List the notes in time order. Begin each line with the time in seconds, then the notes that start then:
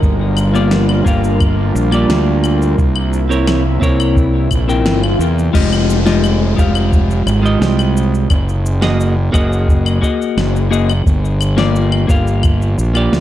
Already playing: A#4
0.02 G1 G3 D4 F4, kick, cabasa
0.37 cabasa, claves
0.54 A#3 F4 G4 D5, cabasa
0.71 snare, cabasa
0.89 claves
1.04 G1 A#3 F4 G4 F5, kick, cabasa
1.24 cabasa
1.40 kick, cabasa, claves
1.75 A#1, cabasa
1.91 A#3 F4 G4 D5, cabasa, claves
2.09 D2, snare, cabasa
2.44 cabasa, claves
2.62 cabasa
2.78 C2 C3 A#3 E4, kick, cabasa
2.96 claves
3.13 cabasa
3.29 C4 E4 A#4 C#5, cabasa
3.47 snare, cabasa, claves
3.81 C2 C4 E4 A#4 C#5, kick, cabasa
4.00 cabasa, claves
4.16 kick, swell, cabasa
4.51 A#1, kick, cabasa, claves
4.68 C4 E4 A#4 G5, cabasa
4.85 G1, snare, cabasa
5.04 claves
5.19 E2, cabasa
5.39 cabasa
5.53 F1 G#3 F4 G4 D#5, kick, crash, downlifter, cabasa
5.73 cabasa, claves
5.90 cabasa
6.05 G#3 F4 G4 D#5, snare, cabasa
6.24 cabasa, claves
6.56 F1 G#3 F4 G4 F5, kick, cabasa
6.75 cabasa, claves
6.92 kick, cabasa
7.11 cabasa
7.26 G#1, cabasa, claves
7.42 G#3 F4 G4 D#5, cabasa
7.60 C2, snare, cabasa
7.79 cabasa, claves
7.97 cabasa
8.15 cabasa
8.30 F#1, kick, cabasa, claves
8.49 cabasa
8.66 cabasa
8.81 A#3 F#4 G#4 D#5, snare, cabasa, claves
9.00 cabasa
9.32 F#1 A#3 F#4 G#4 D#5, kick, cabasa, claves
9.53 cabasa
9.68 kick, cabasa
9.86 cabasa, claves
10.01 A#3 F#4 G#4 D#5, kick, cabasa
10.22 cabasa
10.37 F#1, snare, cabasa, claves
10.56 cabasa
10.71 A#3 F#4 G#4 D#5, cabasa
10.90 cabasa, claves
11.06 G1, kick, cabasa
11.25 cabasa
11.41 cabasa, claves
11.57 A#3 F4 G4 D5, snare, cabasa
11.76 cabasa
11.92 claves
12.07 G1 A#3 F4 G4 F5, kick, cabasa
12.27 cabasa
12.43 kick, cabasa, claves
12.62 cabasa
12.78 A#1, cabasa
12.94 A#3 F4 G4 D5, cabasa, claves
13.13 D2, snare, cabasa